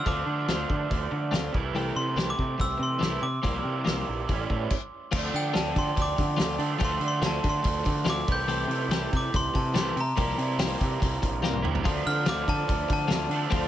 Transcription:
0.06 D2 D3 F3 A3 C4 D4 F4 D6, kick, open hi-hat
0.26 D3, muted clean electric guitar stroke
0.48 D2 A3 C4 F4, snare, open hi-hat
0.70 D3, muted clean electric guitar stroke, kick
0.90 D2, muted clean electric guitar stroke, kick, open hi-hat
1.11 D3, muted clean electric guitar stroke
1.31 D2 A3 C4 F4, snare, open hi-hat
1.52 C2 C3 E3 A3 E4, muted clean electric guitar stroke, kick
1.73 C2 E3 A3 C4 G4, open hi-hat
1.95 C3 C6, muted clean electric guitar stroke
2.16 C2 E3 A3 C4 G4, snare, open hi-hat
2.30 D6
2.37 C3, muted clean electric guitar stroke, kick
2.58 C2 E6, muted clean electric guitar stroke, kick, open hi-hat
2.78 C3, muted clean electric guitar stroke
2.83 C6
2.99 C2 C3 E3 A3 C4 G4, snare, open hi-hat
3.03 E4
3.22 C3 D6, muted clean electric guitar stroke
3.42 C2 C3 F3 G3 A#3 C4 E4 G4, kick, open hi-hat
3.64 C3, muted clean electric guitar stroke
3.85 C2 F3 A#3 C4 G4, snare, open hi-hat
4.07 A#1, muted clean electric guitar stroke
4.29 A1 A2 E3 G3 C#4 E4, muted clean electric guitar stroke, kick, open hi-hat
4.50 A2, muted clean electric guitar stroke, kick
4.70 kick, crash
5.11 D2 D3 F3 A3 C4 F4, kick, crash
5.15 D4
5.34 D3 G5, muted clean electric guitar stroke, open hi-hat
5.53 D2 F3 A3 C4 F4 A5, snare, open hi-hat
5.75 D3 C6, muted clean electric guitar stroke, kick, open hi-hat
5.95 D2, muted clean electric guitar stroke, kick, open hi-hat
6.02 D6
6.16 D3, muted clean electric guitar stroke, kick, open hi-hat
6.37 D2 F3 A3 C4 F4, snare, open hi-hat
6.58 D3 F3 A3 D4, muted clean electric guitar stroke, open hi-hat
6.78 D2 D3 F3 A3 C4 F4, kick, open hi-hat
6.83 A3 D4 C6
7.00 D3, muted clean electric guitar stroke, open hi-hat
7.08 C6
7.22 D2 F3 A3 C4 F4, snare, open hi-hat
7.26 A5
7.43 D3, muted clean electric guitar stroke, kick, open hi-hat
7.50 C6
7.63 D2, muted clean electric guitar stroke, kick, open hi-hat
7.84 D3, muted clean electric guitar stroke, kick, open hi-hat
8.04 D2 F3 A3 C4 F4, snare, open hi-hat
8.10 D6
8.27 C2 C3 E3 A3 E4, muted clean electric guitar stroke, kick, open hi-hat
8.32 G6
8.46 C2 E3 A3 C4 G4, open hi-hat
8.68 C3, muted clean electric guitar stroke, open hi-hat
8.88 C2 E3 A3 C4 G4, snare, open hi-hat
9.11 C3, muted clean electric guitar stroke, kick, open hi-hat
9.17 D6
9.33 C2 C6, muted clean electric guitar stroke, kick, open hi-hat
9.54 C3 A5, muted clean electric guitar stroke, kick, open hi-hat
9.74 C2 C3 E3 A3 C4 G4, snare, open hi-hat
9.78 E4 C6
9.96 C3, muted clean electric guitar stroke, open hi-hat
10.01 A#5
10.16 C2 C3 F3 G3 A#3 C4 E4 G4, kick, open hi-hat
10.38 C3, muted clean electric guitar stroke, open hi-hat
10.58 C2 F3 A#3 C4 G4, snare, open hi-hat
10.79 C3, muted clean electric guitar stroke, kick, open hi-hat
11.00 C2, muted clean electric guitar stroke, kick, open hi-hat
11.22 A#1, muted clean electric guitar stroke, kick, open hi-hat
11.41 C2 F3 A#3 C4 G4, snare
11.53 high tom
11.62 D2 C3 G3 A#3 E4, muted clean electric guitar stroke, mid tom
11.75 floor tom
11.84 D2 D3 F3 A3 C4 D4 F4 C5 D5 A5, kick, open hi-hat
12.05 D3 F6, muted clean electric guitar stroke, open hi-hat
12.26 D2 F3 A3 C4 F4 D6, snare, open hi-hat
12.48 D3 A5, kick, open hi-hat
12.68 D2, muted clean electric guitar stroke, kick, open hi-hat
12.88 D3, muted clean electric guitar stroke, kick, open hi-hat
12.93 A5
13.08 D2 F3 A3 C4 F4, snare, open hi-hat
13.29 D3 A3 D4, muted clean electric guitar stroke, open hi-hat
13.33 D3 F3
13.50 D2 D3 F3 A3 C4 F4, kick, open hi-hat
13.55 A3 D4

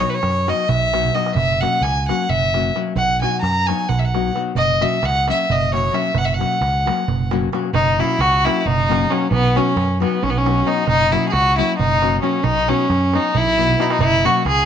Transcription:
0.00 F#3 B3 D#4 F#4 C#5, darbuka tek
0.10 B4, darbuka tek
0.14 C#5
0.23 F#2, darbuka tek
0.36 darbuka tek
0.47 F#3 B3 D#4 F#4 D#5, darbuka tek
0.59 darbuka tek
0.69 B1 E5, darbuka dum
0.82 darbuka tek
0.92 F#3 B3 D#4 F#4, darbuka tek
1.05 darbuka dum
1.13 F#3 B3 D#4 F#4 D#5, darbuka tek
1.26 darbuka tek
1.35 F#1 E5, darbuka dum
1.50 darbuka tek
1.61 F#3 A#3 C#4 F#4 F#5, darbuka tek
1.81 C#2 G#5, darbuka tek
2.08 F#3 A#3 C#4 F#4 F#5, darbuka tek
2.29 F#1 E5, darbuka dum
2.41 darbuka tek
2.54 F#3 A#3 C#4 F#4, darbuka tek
2.75 F#3 A#3 C#4 F#4, darbuka tek
2.87 darbuka tek
2.95 B1 F#5, darbuka dum
3.10 darbuka tek
3.21 F#3 B3 D#4 F#4 G#5, darbuka tek
3.41 F#2 A#5, darbuka tek
3.67 F#3 B3 D#4 F#4 G#5, darbuka tek
3.89 B1 F#5, darbuka dum
3.99 E5, darbuka tek
4.05 F#5
4.14 F#3 B3 D#4 F#4, darbuka tek
4.35 F#3 B3 D#4 F#4, darbuka tek
4.46 darbuka tek
4.55 F#1 D#5, darbuka dum
4.69 darbuka tek
4.81 F#3 A#3 C#4 F#4 E5, darbuka tek
5.03 C#2 F#5, darbuka tek
5.28 F#3 A#3 C#4 F#4 E5, darbuka tek
5.50 F#1 D#5, darbuka dum
5.62 darbuka tek
5.72 F#3 A#3 C#4 F#4 C#5, darbuka tek
5.92 F#3 A#3 C#4 F#4 E5, darbuka tek
6.04 darbuka tek
6.14 F#1 F#5, darbuka dum
6.25 E5, darbuka tek
6.34 F#5
6.39 F#3 A#3 C#4 F#4, darbuka tek
6.61 C#2, darbuka tek
6.75 darbuka tek
6.86 F#3 A#3 C#4 F#4, darbuka tek
6.99 darbuka tek
7.08 F#1, darbuka dum
7.20 darbuka tek
7.31 F#3 A#3 C#4 F#4, darbuka tek
7.43 darbuka tek
7.52 F#3 A#3 C#4 F#4, darbuka tek
7.65 darbuka tek
7.73 F#1 D#4, darbuka dum
7.88 darbuka tek
7.98 F#3 A#3 C#4 E4 F#4, darbuka tek
8.19 C#2 F#4, darbuka tek
8.44 F#3 A#3 C#4 E4 F#4, darbuka tek
8.60 E4
8.65 F#1 D#4, darbuka dum
8.80 darbuka tek
8.88 F#3 A#3 C#4 F#4, darbuka tek
9.10 F#3 A#3 C#4 F#4, darbuka tek
9.23 darbuka tek
9.31 B1 B3, darbuka dum
9.44 darbuka tek
9.55 F#3 B3 C#4 D#4 F#4, darbuka tek
9.76 F#2, darbuka tek
10.00 F#3 B3 D#4 F#4, darbuka tek
10.23 B1 C#4, darbuka dum
10.30 B3
10.35 C#4, darbuka tek
10.45 F#3 B3 D#4 F#4, darbuka tek
10.65 F#3 B3 D#4 F#4, darbuka tek
10.77 darbuka tek
10.87 F#1 D#4, darbuka dum
11.01 darbuka tek
11.12 F#3 A#3 C#4 E4 F#4, darbuka tek
11.29 F#4 G#4
11.33 C#2, darbuka tek
11.57 F#3 A#3 C#4 E4 F#4, darbuka tek
11.77 F#1 D#4, darbuka dum
11.92 darbuka tek
12.02 F#3 A#3 C#4 F#4, darbuka tek
12.22 F#3 A#3 C#4 F#4, darbuka tek
12.34 darbuka tek
12.44 B1 D#4, darbuka dum
12.57 darbuka tek
12.68 F#3 B3 C#4 D#4 F#4, darbuka tek
12.80 darbuka tek
12.90 F#2, darbuka tek
13.02 darbuka tek
13.13 F#3 B3 D#4 F#4, darbuka tek
13.25 darbuka tek
13.35 B1 E4, darbuka dum
13.46 darbuka dum
13.58 F#3 B3 D#4 F#4, darbuka dum
13.69 darbuka dum
13.78 F#3 B3 D#4 E4 F#4, darbuka tek
13.90 D#4, darbuka tek
13.99 F#1 E4, darbuka dum
14.13 darbuka tek
14.24 F#3 A#3 C#4 F#4, darbuka tek
14.45 C#2 G#4, darbuka tek

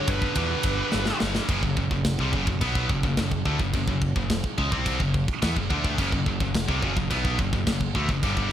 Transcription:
Already playing: G2 D3 G3 C#5
0.08 G1 B4, kick, ride
0.22 kick
0.35 E2 G2 D3 G3, kick, ride
0.63 G1, kick, ride
0.92 G1, snare
1.06 snare
1.20 G1, snare
1.35 snare
1.49 F#1 F#2 C#3, kick, crash
1.63 F#1 F#2 C#3, kick
1.76 F#1 F#2 C#3, kick
1.91 F#1 F#2 C#3, kick
2.05 kick, snare, crash
2.19 C2 C3 G3, kick
2.33 F#1 F#2 C#3, kick
2.47 F#1 F#2 C#3, kick
2.61 B1 B2 F#3 B3, kick, crash
2.75 kick
2.89 F#1 F#2 C#3, kick
3.03 F#1 F#2 C#3, kick
3.17 F#1 F#2 C#3, kick, snare, crash
3.32 kick
3.45 D2 D3 A3, kick
3.59 F#1 F#2 C#3, kick
3.73 F#1 F#2 C#3, kick, crash
3.88 F#1 F#2 C#3, kick
4.02 kick
4.16 F#1 F#2 C#3, kick
4.30 kick, snare, crash
4.44 kick
4.58 C#2 C#3 G#3, kick
4.72 C2 C3 G3 C4, kick
4.86 kick, crash
5.00 F#1 F#2 C#3, kick
5.14 kick
5.28 kick
5.42 E2 E3 B3, kick, snare, crash
5.56 F#1 F#2 C#3, kick
5.70 D2 D3 A3 D4, kick
5.85 kick
5.98 F#1 F#2 C#3, kick, crash
6.12 F#1 F#2 C#3, kick
6.26 F#1 F#2 C#3, kick
6.40 F#1 F#2 C#3, kick
6.55 kick, snare, crash
6.68 C2 C3 G3, kick
6.82 F#1 F#2 C#3, kick
6.96 F#1 F#2 C#3, kick
7.10 B1 B2 F#3 B3, kick, crash
7.25 kick
7.39 F#1 F#2 C#3, kick
7.53 F#1 F#2 C#3, kick
7.67 F#1 F#2 C#3, kick, snare, crash
7.81 kick
7.95 D2 D3 A3, kick
8.09 F#1 F#2 C#3, kick
8.23 G1 G2 D3 G3, kick, crash
8.37 kick

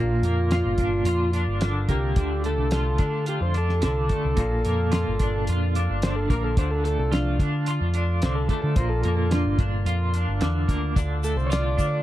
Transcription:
Already playing: A#1 A#2 D4 F4 D5 F5
0.00 A#4
0.23 F2 A#3, closed hi-hat
0.51 F4, snare, closed hi-hat
0.65 G1
0.78 D4, kick, closed hi-hat
1.05 F2 F4, closed hi-hat
1.33 D4, closed hi-hat
1.47 G1
1.61 D3, snare, closed hi-hat
1.89 C2 A#3 G4, kick, closed hi-hat
2.16 D2 D3 A4, kick, closed hi-hat
2.44 A3 A4, closed hi-hat
2.58 C2
2.71 F4, snare, closed hi-hat
2.98 D3 D4, kick, closed hi-hat
3.26 F4 G4, closed hi-hat
3.41 F2 C5
3.54 D4 A4, closed hi-hat
3.69 snare
3.82 C2 D3 A4, snare, closed hi-hat
4.09 A3, kick, closed hi-hat
4.25 C2
4.37 A#1 A#2 A#3 F5, kick, closed hi-hat
4.65 F2 A#3, closed hi-hat
4.92 F4, snare, closed hi-hat
5.07 G1
5.19 D4, kick, closed hi-hat
5.47 F2 F4, closed hi-hat
5.75 D4, closed hi-hat
5.90 G1
6.02 D3 C5, snare, closed hi-hat
6.16 A4
6.30 A#1 A#3 A#4, kick, closed hi-hat
6.44 A4
6.57 D2 D3 A4 C5 F5, kick, closed hi-hat
6.71 A4
6.84 A3 A4, closed hi-hat
6.99 C2 A4
7.11 F3 D4 F4, snare, closed hi-hat
7.39 D3 D4, kick, closed hi-hat
7.66 F4, closed hi-hat
7.81 F2
7.94 D4, closed hi-hat
8.22 C2 D3 C5, snare, closed hi-hat
8.35 A4
8.49 A3 A4, kick, closed hi-hat
8.62 D3 A4
8.76 A#1 A#2 F4 A#4 C5, kick, closed hi-hat
8.89 A4
9.03 F2 A#3 A4, closed hi-hat
9.17 A4
9.31 D4 F4, snare, closed hi-hat
9.45 G1
9.59 D4, kick, closed hi-hat
9.85 F2 F4, closed hi-hat
10.14 D4, closed hi-hat
10.28 G1
10.41 E2 D3, snare, closed hi-hat
10.68 D2 A#3, kick, closed hi-hat
10.96 D2 D3 A4 D5, kick, closed hi-hat, shaker
11.23 A3 A4, closed hi-hat, shaker
11.36 C2 C5, shaker
11.46 F4 C#5
11.51 D5, snare, closed hi-hat, shaker
11.77 D3 D4, kick, closed hi-hat, shaker

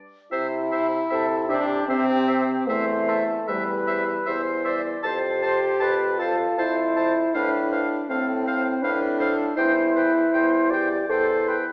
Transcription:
0.32 C3 E4 C5 E5
0.72 C5 E5
1.10 C3 A4 C5 E5
1.49 D4 G4 C5 E5
1.88 C3 C4 C5 E5
2.28 C5 E5
2.68 E2 A3 C5 E5
3.08 A4 C5 E5
3.48 E2 G3 B4 C5 E5
3.88 C5 E5
4.26 E2 C5 E5
4.65 C5 D5 E5
5.03 F2 G4 C5 A5
5.42 C5 A5
5.80 F2 B4 C5 A5
6.19 F4 A4 C5 A5
6.58 F2 E4 C5 A5
6.96 C5 A5
7.34 A2 D4 B4 C5 F5
7.71 C5 F5
8.08 A2 C4 A4 C5 F5
8.46 C5 F5
8.82 A2 D4 B4 C5 F5
9.19 A4 C5 F5
9.57 E2 E4 C5 G5
9.95 B4 C5 G5
10.32 E2 C5 G5
10.70 G4 C5 D5 G5
11.09 E2 A4 C5 G5
11.48 B4 C5 G5

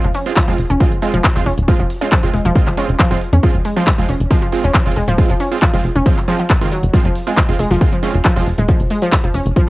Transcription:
0.04 F1 F3, closed hi-hat
0.15 C#4, open hi-hat
0.26 G#3 C4 F4, closed hi-hat
0.36 F3, kick, clap, closed hi-hat
0.48 F1 F3 G#3 C4 F4, closed hi-hat
0.58 F1, open hi-hat
0.70 F1 C#4, closed hi-hat
0.80 F3 G#3 C4 F4, kick, closed hi-hat
0.92 closed hi-hat
1.02 G#3 C4 F4, open hi-hat
1.13 F1 F3, closed hi-hat
1.24 kick, clap, closed hi-hat
1.35 F1 F3 G#3 C4 F4, closed hi-hat
1.46 F1 C#4, open hi-hat
1.57 D#1, closed hi-hat
1.68 F3 G#3 C4 F4, kick, closed hi-hat
1.79 F1 F3, closed hi-hat
1.90 open hi-hat
2.01 G#3 C4 C#4 F4, closed hi-hat
2.12 F3, kick, clap, closed hi-hat
2.23 F1 G#3 C4 F4, closed hi-hat
2.34 F1 G#3, open hi-hat
2.45 F1 F3, closed hi-hat
2.55 G#3 C4 F4, kick, closed hi-hat
2.67 G#1 F3, clap, closed hi-hat
2.77 G#3 C4 C#4 F4, open hi-hat
2.89 F1, closed hi-hat
2.99 F3, kick, clap, closed hi-hat
3.11 D#1 F3 G#3 C4 F4, closed hi-hat
3.21 open hi-hat
3.33 F2 C#4, closed hi-hat
3.43 F3 G#3 C4 F4, kick, closed hi-hat
3.55 F1, closed hi-hat
3.65 G#3, open hi-hat
3.76 F3 G#3 C4 F4, closed hi-hat
3.87 kick, clap, closed hi-hat
3.98 F1 F3 G#3 C4 F4, closed hi-hat
4.09 F1 C#4, open hi-hat
4.20 F1, closed hi-hat
4.31 F3 G#3 C4 F4, kick, closed hi-hat
4.42 F3, closed hi-hat
4.52 G#3 C4 F4, open hi-hat
4.64 F1 C#4, closed hi-hat
4.75 F3, kick, clap, closed hi-hat
4.86 F1 G#3 C4 F4, closed hi-hat
4.96 F1 G#3, open hi-hat
5.08 D#1 F3, closed hi-hat
5.18 G#3 C4 F4, kick, closed hi-hat
5.30 F1 F3, closed hi-hat
5.40 C#4, open hi-hat
5.52 G#3 C4 F4, closed hi-hat
5.62 F3, kick, clap, closed hi-hat
5.74 F1 F3 G#3 C4 F4, closed hi-hat
5.84 F1, open hi-hat
5.96 F1 C#4, closed hi-hat
6.06 F3 G#3 C4 F4, kick, closed hi-hat
6.18 clap, closed hi-hat
6.28 F3 G#3 C4 F4, open hi-hat
6.39 F3, closed hi-hat
6.50 kick, clap, closed hi-hat
6.61 D#3 G#3 C4 F4, closed hi-hat
6.72 F#3, open hi-hat
6.83 F1, closed hi-hat
6.93 F3 G#3 C4 F4, kick, closed hi-hat
7.05 F1 F3, closed hi-hat
7.15 open hi-hat
7.27 G#3 C4 F4, closed hi-hat
7.37 F3, kick, clap, closed hi-hat
7.49 F1 G#3 C4 F4, closed hi-hat
7.59 F1 G#3, open hi-hat
7.71 F1 F3, closed hi-hat
7.81 G#3 C4 F4, kick, closed hi-hat
7.93 F3, closed hi-hat
8.03 G#3 C4 C#4 F4, open hi-hat
8.14 F1, closed hi-hat
8.25 F3, kick, clap, closed hi-hat
8.36 F1 F3 G#3 C4 F4, closed hi-hat
8.47 F1, open hi-hat
8.58 D#1 G#3, closed hi-hat
8.68 F3, kick, closed hi-hat
8.80 F1, closed hi-hat
8.90 G#3, open hi-hat
9.02 F3, closed hi-hat
9.12 kick, clap, closed hi-hat
9.24 F1 F3, closed hi-hat
9.34 F1 C#4, open hi-hat
9.46 F1, closed hi-hat
9.56 F3, kick, closed hi-hat

